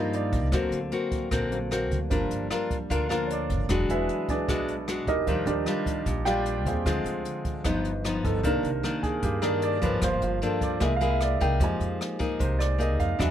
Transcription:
Already playing: upright bass G2, grand piano D#3 F3 A#3 D4 D5 D#5, nylon-string guitar G3 A#3 D#4 F4
0.13 grand piano D5, closed hi-hat
0.32 upright bass C2, kick, closed hi-hat
0.51 upright bass D2, nylon-string guitar D3 A#3 C4 F#4, grand piano F#3 A#3 C4, kick, cross-stick, closed hi-hat
0.71 upright bass D2, closed hi-hat
0.92 nylon-string guitar A#3 C4 F#4, closed hi-hat
1.12 kick, closed hi-hat
1.31 upright bass A#1, nylon-string guitar D3 A#3 C4 F#4, kick, cross-stick, closed hi-hat
1.51 grand piano F#3 A#3 C4, closed hi-hat
1.71 nylon-string guitar A#3 C4 F#4, cross-stick, closed hi-hat
1.91 upright bass D2, kick, closed hi-hat
2.10 upright bass G1, grand piano F3 A#3 D4, nylon-string guitar G3 D4 F4 A#4, kick, closed hi-hat
2.31 upright bass G1, closed hi-hat
2.50 nylon-string guitar D4 F4 A#4, cross-stick, closed hi-hat
2.71 kick, closed hi-hat
2.90 upright bass D2, nylon-string guitar D3 D4 F4 A#4, grand piano F5, kick, closed hi-hat
3.09 grand piano F3 A#3 D4, nylon-string guitar D4 F4 A#4, cross-stick, closed hi-hat
3.27 grand piano C#5, closed hi-hat
3.32 grand piano D5
3.50 upright bass G1, kick, closed hi-hat
3.69 upright bass E1, nylon-string guitar E3 G#3 D4 F#4, grand piano F#3 G#3 D4, kick, cross-stick, closed hi-hat
3.89 upright bass E1, grand piano E4 G#4 B4 E5, closed hi-hat
4.09 closed hi-hat
4.29 grand piano D4 G#4 B4 D5, kick, closed hi-hat
4.48 upright bass B1, nylon-string guitar B2 G#3 D4 F#4, kick, cross-stick, closed hi-hat
4.68 closed hi-hat
4.88 nylon-string guitar G#3 D4 F#4, cross-stick, closed hi-hat
5.07 upright bass E1, grand piano D#4 G4 A#4 D#5, kick, closed hi-hat
5.26 upright bass D#2, nylon-string guitar D#3 G3 D4 F4, grand piano F3 G3 D#4, kick, closed hi-hat
5.46 upright bass D#2, grand piano D4 G4 A#4 D5, closed hi-hat
5.66 nylon-string guitar G3 D4 F4, cross-stick, closed hi-hat
5.86 kick, closed hi-hat
6.06 upright bass A#1, nylon-string guitar A#2, kick, closed hi-hat
6.25 nylon-string guitar G3 D4 F4, grand piano G4 D5 F5 G5, cross-stick, closed hi-hat
6.46 closed hi-hat
6.66 upright bass D#2, grand piano C4 F4 G#4 C5, kick, closed hi-hat
6.86 upright bass D2, nylon-string guitar D3 G#3 C4 F4, grand piano F3 G#3 C4, kick, cross-stick, closed hi-hat
7.04 upright bass D2, closed hi-hat
7.25 closed hi-hat
7.45 kick, closed hi-hat
7.64 upright bass G1, nylon-string guitar G2 F3 B3 D#4, grand piano F3 B3 D#4, kick, cross-stick, closed hi-hat
7.85 closed hi-hat
8.04 nylon-string guitar F3 B3 D#4, cross-stick, closed hi-hat
8.24 upright bass G1, grand piano A4, kick, closed hi-hat
8.43 upright bass C2, nylon-string guitar C3 D#3 A#3 D4, grand piano D#3 A#3 D4 A#4, kick, closed hi-hat
8.63 upright bass C2, closed hi-hat
8.83 nylon-string guitar D#3 A#3 D4, cross-stick, closed hi-hat
9.03 grand piano G#4, kick, closed hi-hat
9.23 nylon-string guitar G2, upright bass G2, grand piano G4, kick, closed hi-hat
9.42 nylon-string guitar D#3 A#3 D4, grand piano A#4, cross-stick, closed hi-hat
9.62 grand piano D5, closed hi-hat
9.82 upright bass G#1, nylon-string guitar F3 A#3 D4, grand piano B4, kick, closed hi-hat
10.02 upright bass G1, nylon-string guitar G2, grand piano A#3 F4 C5, kick, cross-stick, closed hi-hat
10.22 upright bass G1, grand piano F4, closed hi-hat
10.42 nylon-string guitar F3 A#3 D4, grand piano A4, closed hi-hat
10.61 grand piano D5, kick, closed hi-hat
10.80 upright bass C2, nylon-string guitar C3 A#3 E4 G#4, grand piano G#3 A#3 E4 E5, kick, cross-stick, closed hi-hat
10.96 grand piano F5
11.01 nylon-string guitar A#3 E4 G#4, closed hi-hat
11.10 grand piano E5
11.21 grand piano D5, cross-stick, closed hi-hat
11.41 upright bass C2, nylon-string guitar A#3 D#4 G#4, grand piano G5, kick, closed hi-hat
11.60 upright bass F2, nylon-string guitar F3, grand piano G#3 A#3 D#4 G4, kick, closed hi-hat
11.64 grand piano G#5
11.80 upright bass F2, closed hi-hat
12.01 cross-stick, closed hi-hat
12.19 nylon-string guitar A#3 D#4 G#4, kick, closed hi-hat
12.39 upright bass C2, nylon-string guitar C3, grand piano C5, kick, closed hi-hat
12.59 grand piano D5, cross-stick, closed hi-hat
12.78 nylon-string guitar A#3 D#4 G#4, grand piano D#5, closed hi-hat
13.00 upright bass F2, grand piano F5, kick, closed hi-hat
13.19 upright bass E2, nylon-string guitar E3 D4 F#4 G#4, grand piano F#3 G#3 D4 E5, kick, cross-stick, closed hi-hat

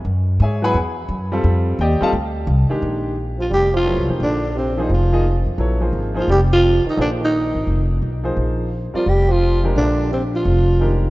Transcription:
0.05 upright bass F#2
0.40 upright bass G#2, grand piano G#4 C#5 E5 G#5
0.62 grand piano F#3 B3 E4 G#4 B4 F#5 G#5 B5
0.74 upright bass E2
1.09 upright bass F#2
1.32 grand piano G3 C4 F4 A4
1.44 upright bass F2
1.79 upright bass D#2, grand piano G4 D5 D#5 G5
2.01 grand piano G3 C4 F4 A4 D#5 F5 A5, muted upright bass stroke
2.13 upright bass D2
2.47 upright bass C2
2.69 grand piano D#3 G#3 D4 G4, muted upright bass stroke
2.82 upright bass A#1
3.38 trombone F3, tenor saxophone F4
3.50 upright bass F1, trombone G3
3.54 tenor saxophone G4
3.73 trombone F3, tenor saxophone F4
3.85 grand piano F#3 B3 E4 A4 C#5
3.97 upright bass C2
4.08 upright bass F2, grand piano F3 A#3 D#4 G#4 C5
4.20 upright bass A#1, trombone D3, tenor saxophone D4
4.54 trombone C3
4.58 tenor saxophone C4
4.76 trombone D#3, grand piano F3 A#3 D#4 G#4 C5
4.82 tenor saxophone D#4
4.89 upright bass F1, trombone F3
4.94 tenor saxophone F4
5.12 grand piano F3 A#3 D#4 G#4 D#5
5.46 upright bass F2
5.58 upright bass A#1, grand piano F#3 B3 E4 A4 C#5
5.81 grand piano F3 A#3 D#4 G#4 C5
5.93 upright bass G#1
6.14 grand piano F3 A#3 D#4 G#4 C5, trombone F3
6.20 tenor saxophone F4
6.28 upright bass F1, trombone G3, tenor saxophone G4
6.52 trombone F3, tenor saxophone F4
6.85 trombone D#3, muted upright bass stroke
6.90 tenor saxophone D#4
6.97 upright bass A#1, trombone D3, grand piano F3 A#3 D#4 G#4 C5
7.01 tenor saxophone D4
7.19 trombone D#3
7.24 tenor saxophone D#4
7.55 upright bass G#1
7.67 upright bass F1
8.02 upright bass B1
8.24 grand piano F3 A#3 D#4 G#4 C5
8.37 upright bass A#1
8.94 trombone F3, grand piano G3 C4 F4 A#4 D5, tenor saxophone F4, muted upright bass stroke
9.06 upright bass F1, trombone G3, tenor saxophone G4
9.29 trombone F3, tenor saxophone F4
9.63 grand piano F3 G#3 D4 G4 A#4
9.76 upright bass A#1, trombone D3, tenor saxophone D4
10.11 trombone C3, tenor saxophone C4
10.34 trombone F3, tenor saxophone F4
10.45 upright bass F1
10.80 grand piano D#3 G#3 D4 G4 A#4

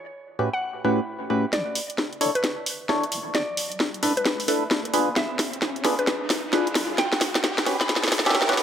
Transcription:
0.39 synth stab A2 C#4 E4 F#4 G4 B4
0.54 synth pluck F#5
0.85 synth stab A2 C#4 E4 F#4 G4 B4
1.30 synth stab A2 C#4 E4 F#4 G4 B4
1.53 wobble bass B1, synth pluck D5, snare, closed hi-hat, riser
1.75 open hi-hat
1.90 closed hi-hat
1.98 snare
2.13 closed hi-hat
2.21 wobble bass F#1, synth stab D4 E4 A4 C#5, open hi-hat
2.35 synth pluck B4, closed hi-hat
2.44 snare, closed hi-hat
2.66 open hi-hat
2.89 synth stab D4 E4 A4 C#5, snare
3.04 closed hi-hat
3.12 wobble bass F#1, open hi-hat
3.35 wobble bass G1, synth pluck D5, snare, closed hi-hat
3.57 open hi-hat
3.72 closed hi-hat
3.80 snare
3.94 closed hi-hat
4.03 wobble bass G2, synth stab D4 E4 A4 B4, open hi-hat
4.17 synth pluck B4, closed hi-hat
4.25 snare, closed hi-hat
4.40 open hi-hat
4.48 synth stab D4 E4 A4 B4, open hi-hat
4.71 snare
4.85 closed hi-hat
4.94 wobble bass E1, synth stab D4 F4 G#4 B4, open hi-hat
5.16 wobble bass E1, synth pluck E5, snare, closed hi-hat
5.39 snare, open hi-hat
5.53 closed hi-hat
5.62 snare
5.76 closed hi-hat
5.84 wobble bass E2, synth stab D4 F4 G#4 B4, snare, open hi-hat
5.99 synth pluck B4, closed hi-hat
6.07 snare, closed hi-hat
6.30 snare, open hi-hat
6.53 synth stab D4 F4 G#4 B4, snare
6.67 closed hi-hat
6.75 wobble bass B1, snare, open hi-hat
6.98 wobble bass A1, synth pluck G5, snare, closed hi-hat
7.13 snare
7.21 snare, open hi-hat
7.35 snare, closed hi-hat
7.44 snare
7.58 snare, closed hi-hat
7.66 wobble bass A2, synth stab C#4 F#4 G4 B4, snare, open hi-hat
7.81 synth pluck B5, snare, closed hi-hat
7.89 snare, closed hi-hat
7.96 snare
8.03 snare, open hi-hat
8.08 snare
8.12 snare, open hi-hat
8.19 snare
8.26 synth stab C#4 F#4 G4 E5, snare
8.30 snare
8.35 snare
8.42 snare
8.49 synth stab C#4 F#4 G4 B4, snare, closed hi-hat
8.53 snare
8.57 wobble bass C#2, snare, open hi-hat

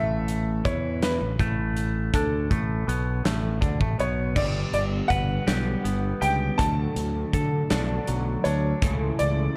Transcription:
Already playing: fingered electric bass A1, clean electric guitar A2 A3, upright piano E5
0.28 closed hi-hat
0.65 fingered electric bass E2, clean electric guitar E3 E4, upright piano C#5, kick, closed hi-hat
1.02 upright piano B4, snare, closed hi-hat
1.21 fingered electric bass A1, clean electric guitar A2
1.39 fingered electric bass A1, clean electric guitar A2 A3, kick, closed hi-hat
1.77 closed hi-hat
2.13 fingered electric bass D2, clean electric guitar D3 D4, upright piano A4, kick, closed hi-hat
2.50 fingered electric bass A1, clean electric guitar A2 A3, kick, closed hi-hat
2.87 fingered electric bass B1, clean electric guitar B2 B3, closed hi-hat
3.24 fingered electric bass A1, clean electric guitar A2 A3, snare, closed hi-hat
3.61 fingered electric bass D2, clean electric guitar D3 D4, kick, closed hi-hat
3.80 fingered electric bass A1, clean electric guitar A2 A3, kick
3.98 fingered electric bass B1, clean electric guitar B2 B3, upright piano C#5, closed hi-hat
4.35 fingered electric bass G1, clean electric guitar G2 D3 G3 B3 D4, upright piano D5, kick, crash
4.73 fingered electric bass G1, upright piano D5, closed hi-hat
5.08 fingered electric bass G1, clean electric guitar B4, upright piano F#5, kick, closed hi-hat
5.47 fingered electric bass B1, clean electric guitar G2 D3 G3 B3 D4 G4, snare, closed hi-hat
5.84 fingered electric bass G1, clean electric guitar B3, closed hi-hat
6.21 fingered electric bass C#2, clean electric guitar G4, upright piano G5, closed hi-hat
6.58 fingered electric bass D2, clean electric guitar D3 F#3 A3 D4, upright piano A5, kick, closed hi-hat
6.96 fingered electric bass D2, closed hi-hat
7.33 fingered electric bass D3, clean electric guitar A4, kick, closed hi-hat
7.70 fingered electric bass B1, clean electric guitar D3 F#3 A3 D4, snare, closed hi-hat
8.07 fingered electric bass B1, clean electric guitar F#3, closed hi-hat
8.44 fingered electric bass D2, clean electric guitar D4, upright piano C#5, closed hi-hat
8.82 fingered electric bass C#2, clean electric guitar C#3 E3 A3 E4 A4, kick, closed hi-hat
9.19 fingered electric bass C#2, upright piano D5, closed hi-hat

